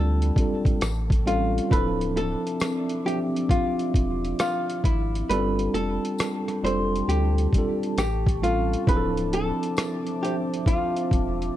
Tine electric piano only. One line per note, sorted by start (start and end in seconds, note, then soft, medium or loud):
0.00 0.37 G3 loud
0.00 0.38 C4 loud
0.00 0.38 D4 loud
0.00 0.39 F4 loud
0.00 0.40 A4 loud
0.00 0.23 D5 medium
0.37 0.81 G3 medium
0.37 0.82 C4 medium
0.37 0.82 D4 medium
0.37 0.83 F4 medium
0.37 0.83 A4 medium
1.26 1.64 G3 medium
1.26 1.64 C4 medium
1.26 1.65 C#4 medium
1.26 1.65 F4 medium
1.26 1.65 A4 medium
1.70 2.80 F3 loud
1.70 2.81 C4 medium
1.70 2.81 D4 medium
1.70 2.81 E4 medium
1.70 2.82 A4 loud
3.05 4.47 F3 medium
3.05 4.48 C4 medium
3.05 4.48 D4 medium
3.05 4.49 G4 medium
3.05 4.49 E5 medium
5.30 6.39 G3 loud
5.30 5.39 B3 medium
5.30 6.40 D4 medium
5.30 6.41 F4 medium
5.30 6.41 A4 loud
5.38 6.43 C4 loud
6.63 7.39 G3 medium
6.63 7.40 C4 medium
6.63 7.40 D4 medium
6.63 7.40 F4 medium
6.63 7.41 A4 medium
7.55 7.99 G3 medium
7.55 7.99 C4 medium
7.55 8.00 D4 medium
7.55 8.00 F4 medium
7.55 8.01 A4 medium
8.42 8.80 G3 medium
8.42 8.80 C4 medium
8.42 8.81 C#4 medium
8.42 8.81 F4 medium
8.42 8.82 A4 medium
8.87 9.97 F3 loud
8.87 9.97 C4 loud
8.87 9.98 D4 medium
8.87 9.98 E4 medium
8.87 8.97 G#4 medium
8.97 10.02 A4 loud
10.22 11.57 F3 medium
10.22 11.57 C4 medium
10.22 11.57 D4 medium
10.22 11.57 C5 medium
10.22 11.57 E5 medium